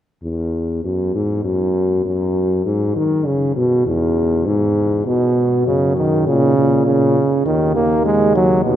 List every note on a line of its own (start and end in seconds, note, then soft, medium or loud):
0.23 0.80 E2 medium
0.84 1.14 F#2 medium
1.15 1.44 G#2 medium
1.44 2.04 F#2 medium
2.05 2.65 F#2 medium
2.66 2.95 G#2 medium
2.95 3.28 D#3 medium
3.26 3.55 C#3 medium
3.56 3.85 B2 medium
3.86 4.47 E2 medium
4.46 5.06 G#2 medium
5.06 5.62 B2 medium
5.06 5.65 B2 medium
5.66 6.29 F#2 medium
5.66 5.96 C#3 medium
5.97 6.26 D#3 medium
6.27 6.56 A#2 medium
6.27 6.85 C#3 medium
6.57 7.18 A#2 medium
6.86 7.45 C#3 medium
7.46 8.62 D#2 medium
7.46 7.75 D#3 medium
7.76 8.04 A#3 medium
8.05 8.35 G#3 medium
8.35 8.64 F#3 medium
8.65 8.76 D#2 medium
8.65 8.76 B2 medium